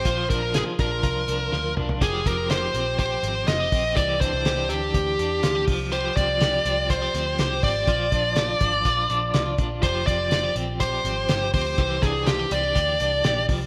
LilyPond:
<<
  \new Staff \with { instrumentName = "Lead electric guitar" } { \time 4/4 \key f \dorian \tempo 4 = 123 c''8 bes'8 aes'8 bes'2 r8 | aes'8 bes'8 c''4 c''4 ees''4 | d''8 c''4 g'2 r8 | c''8 d''4. c''4. d''8~ |
d''2.~ d''8 r8 | c''8 d''4 r8 c''4. c''8~ | c''8 aes'8 g'8 d''2 r8 | }
  \new Staff \with { instrumentName = "Clean electric guitar" } { \time 4/4 \key f \dorian <f f'>8 d'8 f'8 d'8 f'8 d'8 f'8 d'8 | <f g'>8 c'8 g'8 c'8 g'8 c'8 f'16 g'16 c'8 | <e g'>8 d'8 g'8 d'8 g'8 d'8 f'16 g'16 f8 | <f g'>8 c'8 g'8 c'8 f'16 g'16 c'8 g'8 c'8 |
<f f'>8 d'8 f'8 d'8 f'8 d'8 f'8 d'8 | <f g'>8 c'8 f'16 g'16 c'8 g'8 c'8 g'8 c'8 | <e g'>8 d'8 f'16 g'16 c'16 d'16 g'8 d'8 g'8 f8 | }
  \new Staff \with { instrumentName = "Picked electric bass" } { \clef bass \time 4/4 \key f \dorian bes,,8 bes,,8. r16 bes,,8 c,8 c,8 d,8 c,8 | f,,8 f,,4 bes,,4 aes,,8 f,,8 bes,,8 | c,8. c,8. d,8 d,8 e,8 d,8 c,8~ | c,8 c,4 c,4 d,8 c,8 aes,,8 |
bes,,8 bes,,4 aes,,8 bes,,8 bes,,8 c,8 bes,,8 | f,,8 f,,4 bes,,4 aes,,8 g,,8 d,8 | c,8 c,4 c,8 d,8 c,8 bes,,8 c,8 | }
  \new DrumStaff \with { instrumentName = "Drums" } \drummode { \time 4/4 <hh bd>8 <hh bd>8 <hh sn>8 <hh bd>8 <hh bd>8 hh8 sn8 toml16 tomfh16 | <hh bd>8 <hh bd>8 <hh sn>8 hh8 <hh bd>8 hh8 <hh sn>8 <hho bd>8 | <hh bd>8 <hh bd>8 <hh sn>8 hh8 <hh bd>8 hh8 <hh sn>8 <hho bd>8 | hh8 <hh bd>8 <hh sn>8 hh8 <hh bd>8 hh8 <hh sn>8 <hho bd>8 |
<hh bd>8 <hh bd>8 <hh sn>8 <hh bd>8 <hh bd>8 hh8 <hh sn>8 <hh bd>8 | <hh bd>8 <hh bd>8 <hh sn>8 hh8 <hh bd>8 hh8 <hh sn>8 <hho bd>8 | <hh bd>8 <hh bd>8 <hh sn>8 hh8 <hh bd>8 hh8 <hh sn>8 <hho bd>8 | }
>>